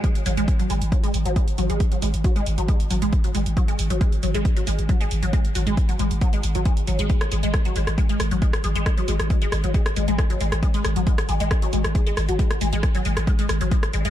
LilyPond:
<<
  \new Staff \with { instrumentName = "Synth arpeggio sound" } { \clef bass \time 4/4 \key fis \dorian \tempo 4 = 136 gis16 r16 fis16 gis16 r16 fis16 gis16 r16 fis16 gis16 r16 fis16 gis16 r16 fis16 gis16 | r16 fis16 gis16 r16 fis16 gis16 r16 fis16 gis16 r16 fis16 gis16 r16 fis16 gis16 r16 | fis16 gis16 r16 fis16 gis16 r16 fis16 gis16 r16 fis16 gis16 r16 fis16 gis16 r16 fis16 | gis16 r16 fis16 gis16 r16 fis16 gis16 r16 fis16 gis16 r16 fis16 gis16 r16 fis16 gis16 |
gis16 r16 gis16 gis16 r16 fis16 gis16 r16 gis16 gis16 r16 fis16 gis16 r16 gis16 gis16 | r16 fis16 gis16 r16 gis16 gis16 r16 fis16 gis16 r16 gis16 gis16 r16 fis16 gis16 r16 | gis16 gis16 r16 fis16 gis16 r16 gis16 gis16 r16 fis16 gis16 r16 gis16 gis16 r16 fis16 | gis16 r16 gis16 gis16 r16 fis16 gis16 r16 gis16 gis16 r16 fis16 gis16 r16 gis16 gis16 | }
  \new Staff \with { instrumentName = "808-style bass" } { \clef bass \time 4/4 \key fis \dorian r8 gis,,16 gis,,16 r8 gis,,16 gis,,16 r8 gis,,16 gis,,16 r8 gis,,16 gis,,16 | r8 gis,,16 gis,,16 r8 gis,,16 gis,,16 r8 gis,,16 gis,,16 r8 gis,,16 gis,,16 | r8 gis,,16 gis,,16 r8 gis,,16 gis,,16 r8 gis,,16 gis,,16 r8 gis,,16 gis,,16 | r8 gis,,16 gis,,16 r8 gis,,16 gis,,16 r8 gis,,16 gis,,16 r8 gis,,16 gis,,16 |
r8 gis,,16 gis,,16 r8 gis,,16 gis,,16 r8 gis,,16 gis,,16 r8 gis,,16 gis,,16 | r8 gis,,16 gis,,16 r8 gis,,16 gis,,16 r8 gis,,16 gis,,16 r8 gis,,16 gis,,16 | r8 gis,,16 gis,,16 r8 gis,,16 gis,,16 r8 gis,,16 gis,,16 r8 gis,,16 gis,,16 | r8 gis,,16 gis,,16 r8 gis,,16 gis,,16 r8 gis,,16 gis,,16 r8 gis,,16 gis,,16 | }
  \new DrumStaff \with { instrumentName = "Drums" } \drummode { \time 4/4 <hh bd>16 hh16 hho16 hh16 <hh bd>16 hh16 hho16 hh16 <hh bd>16 hh16 hho16 hh16 <hh bd>16 hh16 hho16 hh16 | <hh bd>16 hh16 hho16 hh16 <hh bd>16 hh16 hho16 hh16 <hh bd>16 hh16 hho16 hh16 <hh bd>16 hh16 hho16 hh16 | <hh bd>16 hh16 hho16 hh16 <hh bd>16 hh16 hho16 hh16 <hh bd>16 hh16 hho16 hh16 <hh bd>16 hh16 hho16 hh16 | <hh bd>16 hh16 hho16 hh16 <hh bd>16 hh16 hho16 hh16 <hh bd>16 hh16 hho16 hh16 <hh bd>16 hh16 hho16 hh16 |
<hh bd>16 <hh ss>16 hho16 hh16 <hh bd ss>16 hh16 hho16 <hh ss>16 <hh bd>16 hh16 <hho ss>16 hh16 <hh bd>16 <hh ss>16 hho16 hh16 | <hh bd ss>16 hh16 hho16 <hh ss>16 <hh bd>16 hh16 <hho ss>16 hh16 <hh bd>16 <hh ss>16 hho16 hh16 <hh bd ss>16 hh16 hho16 <hh ss>16 | <hh bd>16 hh16 <hho ss>16 hh16 <hh bd>16 <hh ss>16 hho16 hh16 <hh bd ss>16 hh16 hho16 <hh ss>16 <hh bd>16 hh16 <hho ss>16 hh16 | <hh bd>16 <hh ss>16 hho16 hh16 <hh bd ss>16 hh16 hho16 <hh ss>16 <hh bd>16 hh16 <hho ss>16 hh16 <hh bd>16 <hh ss>16 hho16 hh16 | }
>>